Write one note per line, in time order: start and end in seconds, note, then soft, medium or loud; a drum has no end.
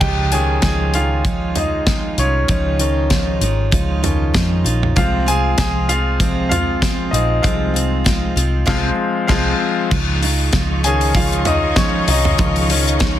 0.00 0.59 C#2 medium
0.00 0.32 C#3 medium
0.00 0.32 F3 medium
0.00 0.32 G#3 medium
0.00 0.32 D#4 medium
0.00 0.30 F4 medium
0.00 0.30 G4 medium
0.00 0.33 G5 medium
0.00 kick medium
0.00 crash medium
0.32 2.76 D#3 medium
0.32 2.76 F3 soft
0.32 0.63 G#3 soft
0.32 2.18 C#4 soft
0.32 0.64 D#4 soft
0.32 0.63 F4 soft
0.32 0.62 G#4 medium
0.32 0.62 G#5 medium
0.32 closed hi-hat medium
0.62 2.14 C#2 medium
0.62 0.94 F3 medium
0.62 0.94 G#3 medium
0.62 0.94 D#4 medium
0.62 0.93 F4 medium
0.62 0.92 G#4 medium
0.62 0.95 G#5 medium
0.62 kick medium
0.62 snare medium
0.62 closed hi-hat medium
0.94 1.25 G#3 soft
0.94 1.26 D#4 soft
0.94 1.25 F4 medium
0.94 1.53 F4 medium
0.94 1.58 F5 medium
0.94 closed hi-hat medium
1.25 1.56 C#3 medium
1.25 1.56 F3 medium
1.25 1.56 G#3 medium
1.25 1.56 D#4 medium
1.25 1.54 F4 medium
1.25 kick loud
1.25 closed hi-hat medium
1.55 1.86 G#3 soft
1.55 1.87 D#4 soft
1.55 2.15 D#4 medium
1.55 1.87 F4 medium
1.55 2.20 D#5 medium
1.55 closed hi-hat medium
1.55 floor tom soft
1.86 2.17 F3 medium
1.86 2.18 G#3 medium
1.86 2.18 D#4 medium
1.86 2.16 F4 medium
1.86 kick medium
1.86 snare medium
1.86 closed hi-hat medium
2.18 2.46 C2 medium
2.18 2.48 G#3 soft
2.18 2.48 C#4 medium
2.18 2.49 D#4 medium
2.18 2.49 F4 soft
2.18 2.47 C#5 medium
2.18 closed hi-hat medium
2.48 3.38 C#2 medium
2.48 2.79 C#3 medium
2.48 2.80 F3 medium
2.48 2.80 G#3 medium
2.48 2.79 C#4 medium
2.48 2.79 D#4 medium
2.48 2.78 F4 medium
2.48 kick loud
2.48 closed hi-hat medium
2.79 3.22 D#3 soft
2.79 3.22 F3 soft
2.79 3.10 G#3 soft
2.79 3.23 C#4 medium
2.79 3.11 D#4 medium
2.79 3.10 F4 medium
2.79 closed hi-hat medium
3.10 3.41 F3 medium
3.10 3.42 G#3 medium
3.10 3.41 D#4 medium
3.10 3.40 F4 medium
3.10 kick medium
3.10 snare medium
3.10 closed hi-hat medium
3.41 3.70 G#1 medium
3.41 3.71 G#3 soft
3.41 3.72 D#4 soft
3.41 3.72 F4 soft
3.41 closed hi-hat medium
3.71 4.30 C#2 medium
3.71 4.03 C#3 medium
3.71 4.03 F3 medium
3.71 4.03 G#3 medium
3.71 4.03 D#4 medium
3.71 4.01 F4 loud
3.71 kick loud
3.71 closed hi-hat medium
4.03 4.31 D#3 soft
4.03 4.31 F3 soft
4.03 4.34 G#3 soft
4.03 4.32 C#4 soft
4.03 4.35 D#4 medium
4.03 4.34 F4 medium
4.03 closed hi-hat medium
4.03 floor tom medium
4.34 4.63 F2 medium
4.34 4.65 F3 medium
4.34 4.66 G#3 medium
4.34 4.65 D#4 medium
4.34 4.63 F4 medium
4.34 kick medium
4.34 snare loud
4.34 closed hi-hat medium
4.64 4.94 A#1 medium
4.64 4.96 G#3 soft
4.64 4.97 D#4 soft
4.64 4.96 F4 medium
4.64 closed hi-hat medium
4.83 floor tom medium
4.96 5.54 C2 loud
4.96 5.27 C3 medium
4.96 5.27 F3 medium
4.96 5.85 F3 soft
4.96 5.27 G#3 medium
4.96 5.86 G#3 soft
4.96 5.27 C4 medium
4.96 5.86 C4 medium
4.96 5.25 F4 medium
4.96 5.26 F4 medium
4.96 5.25 F5 medium
4.96 kick loud
4.96 closed hi-hat medium
5.26 5.57 G#3 medium
5.26 5.58 C4 soft
5.26 5.58 F4 medium
5.26 5.57 G#4 medium
5.26 5.56 G#5 medium
5.26 closed hi-hat medium
5.57 7.09 C2 medium
5.57 5.89 F3 medium
5.57 5.89 G#3 medium
5.57 5.89 C4 medium
5.57 5.88 F4 medium
5.57 5.66 G#4 medium
5.57 5.65 G#5 medium
5.57 kick medium
5.57 snare medium
5.57 closed hi-hat medium
5.89 6.20 G#3 soft
5.89 6.21 C4 soft
5.89 6.20 F4 soft
5.89 6.48 F4 medium
5.89 6.47 F5 medium
5.89 closed hi-hat medium
6.20 6.51 C3 medium
6.20 6.48 F3 soft
6.20 6.51 F3 medium
6.20 6.48 G#3 soft
6.20 6.51 G#3 medium
6.20 6.48 C4 medium
6.20 6.51 C4 medium
6.20 6.50 F4 medium
6.20 kick loud
6.20 closed hi-hat medium
6.49 6.82 C4 soft
6.49 6.82 F4 medium
6.49 7.09 F4 medium
6.49 7.14 F5 medium
6.49 closed hi-hat medium
6.49 floor tom medium
6.54 6.81 G#3 soft
6.82 7.13 F3 medium
6.82 7.13 G#3 medium
6.82 7.13 C4 medium
6.82 7.11 F4 medium
6.82 kick loud
6.82 snare loud
6.82 closed hi-hat medium
7.11 7.42 A#1 medium
7.11 7.43 C4 soft
7.11 7.42 D#4 medium
7.11 7.43 F4 medium
7.11 7.44 D#5 medium
7.11 closed hi-hat medium
7.16 7.43 G#3 soft
7.42 8.33 C2 loud
7.42 7.74 C3 medium
7.42 8.63 F3 soft
7.42 7.75 F3 medium
7.42 8.63 G#3 soft
7.42 7.75 G#3 medium
7.42 8.64 C4 medium
7.42 7.74 C4 medium
7.42 8.02 F4 medium
7.42 7.72 F4 medium
7.42 8.01 F5 medium
7.42 kick medium
7.42 closed hi-hat medium
7.74 8.04 G#3 soft
7.74 8.05 C4 medium
7.74 8.05 F4 medium
7.74 closed hi-hat medium
8.04 8.36 F3 medium
8.04 8.37 G#3 medium
8.04 8.36 C4 medium
8.04 8.35 F4 medium
8.04 kick medium
8.04 snare medium
8.04 closed hi-hat medium
8.36 8.65 C2 medium
8.36 8.66 G#3 soft
8.36 8.66 C4 soft
8.36 8.67 F4 soft
8.36 closed hi-hat medium
8.66 8.89 C2 medium
8.66 8.88 C3 loud
8.66 8.89 F3 medium
8.66 8.89 G#3 medium
8.66 8.90 G#3 medium
8.66 8.89 C4 medium
8.66 8.90 C4 medium
8.66 8.89 F4 medium
8.66 8.90 F4 medium
8.66 8.89 F5 medium
8.66 kick loud
8.66 snare loud
8.66 crash medium
9.27 9.51 C2 loud
9.27 9.50 F3 loud
9.27 9.51 F3 medium
9.27 9.51 G#3 medium
9.27 9.51 C4 medium
9.27 9.52 C4 loud
9.27 9.51 F4 medium
9.27 9.52 F4 medium
9.27 9.50 F5 medium
9.27 kick medium
9.27 snare loud
9.27 crash medium
9.89 10.49 C#2 loud
9.89 10.22 C#3 medium
9.89 10.22 F3 medium
9.89 10.23 G#3 medium
9.89 10.22 D#4 loud
9.89 10.20 F4 medium
9.89 13.19 G#4 medium
9.89 13.19 D#5 medium
9.89 13.19 F5 medium
9.89 13.19 C#6 medium
9.89 kick loud
9.89 crash medium
10.21 10.52 G#3 medium
10.21 10.54 D#4 medium
10.21 10.53 F4 medium
10.21 hi-hat pedal medium
10.21 open hi-hat medium
10.53 12.04 C#2 loud
10.53 10.84 F3 medium
10.53 10.84 G#3 medium
10.53 10.84 D#4 medium
10.53 10.82 F4 medium
10.53 kick loud
10.53 snare loud
10.53 hi-hat pedal medium
10.53 open hi-hat medium
10.83 11.27 D#3 medium
10.83 11.27 F3 soft
10.83 11.27 C#4 medium
10.83 11.15 D#4 medium
10.83 11.15 F4 medium
10.83 11.14 G#4 medium
10.83 11.16 G#5 medium
10.83 hi-hat pedal medium
10.83 open hi-hat medium
11.01 open hi-hat medium
11.15 11.46 C#3 medium
11.15 11.46 F3 medium
11.15 11.46 G#3 medium
11.15 11.47 D#4 medium
11.15 11.45 F4 medium
11.15 11.47 F5 medium
11.15 kick loud
11.15 hi-hat pedal medium
11.15 open hi-hat medium
11.32 hi-hat pedal medium
11.45 11.77 G#3 soft
11.45 11.76 D#4 medium
11.45 11.78 D#4 medium
11.45 11.77 F4 medium
11.45 11.78 D#5 medium
11.45 floor tom medium
11.45 hi-hat pedal medium
11.45 open hi-hat medium
11.76 12.08 F3 medium
11.76 12.08 G#3 medium
11.76 12.06 C#4 medium
11.76 12.07 D#4 medium
11.76 12.06 F4 medium
11.76 12.09 C#5 medium
11.76 kick loud
11.76 snare loud
11.76 hi-hat pedal medium
11.76 open hi-hat medium
12.07 12.37 C2 medium
12.07 12.38 G#3 soft
12.07 12.38 D#4 soft
12.07 13.19 D#4 medium
12.07 12.39 F4 medium
12.07 13.19 D#5 medium
12.07 hi-hat pedal medium
12.07 open hi-hat medium
12.25 floor tom medium
12.38 13.19 C#2 loud
12.38 12.69 C#3 medium
12.38 12.67 D#3 soft
12.38 12.70 F3 medium
12.38 12.67 F3 soft
12.38 12.70 G#3 medium
12.38 12.67 C#4 medium
12.38 12.69 D#4 medium
12.38 12.68 F4 medium
12.38 kick loud
12.38 hi-hat pedal medium
12.38 open hi-hat medium
12.56 open hi-hat medium
12.69 13.19 D#3 medium
12.69 13.19 F3 soft
12.69 12.99 G#3 soft
12.69 13.19 C#4 medium
12.69 13.01 D#4 medium
12.69 13.01 F4 medium
12.69 hi-hat pedal medium
12.69 open hi-hat medium
12.87 hi-hat pedal medium
12.99 13.19 F3 medium
12.99 13.19 G#3 medium
12.99 13.19 D#4 medium
12.99 13.19 F4 medium
12.99 kick loud
12.99 snare loud
12.99 hi-hat pedal medium
12.99 open hi-hat medium